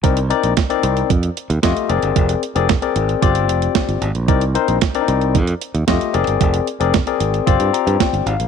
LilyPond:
<<
  \new Staff \with { instrumentName = "Tine electric piano" } { \time 4/4 \key c \minor \tempo 4 = 113 << { r1 | r1 | r1 | r2 r8 bes''8 g''8 f''8 | } \\ { <c' ees' bes' d''>16 r16 <c' ees' bes' d''>8 r16 <c' ees' bes' d''>8. r4 <a f' g' ees''>8 <c' aes' bes' d''>8~ | <c' aes' bes' d''>8 r16 <c' aes' bes' d''>16 r16 <c' aes' bes' d''>8. <c' f' g' d''>4. r8 | <c' ees' bes' d''>16 r16 <c' ees' bes' c''>8 r16 <c' d' ees' bes' d''>8. r4 <a f' g' ees''>8 <c' aes' bes' d''>8~ | <c' aes' bes' d''>8 r16 <c' aes' bes' d''>16 r16 <c' aes' bes' d''>8. <c' f' g' d''>4. r8 | } >> }
  \new Staff \with { instrumentName = "Fingered electric bass" } { \clef bass \time 4/4 \key c \minor c,8. bes,,16 r8 c,8 f,8 r16 ees,16 f,16 r16 f,,16 g,,16 | f,,8 r16 f,,8 r16 aes,,8 g,,8 f,,8 r16 g,,16 aes,,16 bes,,16 | c,8. bes,,16 r8 c,8 f,8 r16 ees,16 f,16 r16 f,,16 g,,16 | f,,8 r16 f,,8 r16 aes,,8 g,,16 g,16 r16 g,16 r16 g,,16 aes,,16 bes,,16 | }
  \new DrumStaff \with { instrumentName = "Drums" } \drummode { \time 4/4 <hh bd>16 hh16 hh16 hh16 <hh bd sn>16 hh16 hh16 hh16 <hh bd>16 hh16 hh16 hh16 <hh bd sn>16 hh16 hh16 hh16 | <hh bd>16 hh16 hh16 hh16 <hh bd sn>16 hh16 hh16 hh16 <hh bd>16 hh16 hh16 hh16 <hh bd sn>16 hh16 hh16 hh16 | <hh bd>16 hh16 hh16 hh16 <hh bd sn>16 hh16 hh16 hh16 <hh bd>16 hh16 hh16 hh16 <hh bd sn>16 hh16 hh16 hh16 | <hh bd>16 hh16 hh16 hh16 <hh bd sn>16 hh16 hh16 hh16 <hh bd>16 hh16 hh16 hh16 <hh bd sn>16 hh16 hh16 hh16 | }
>>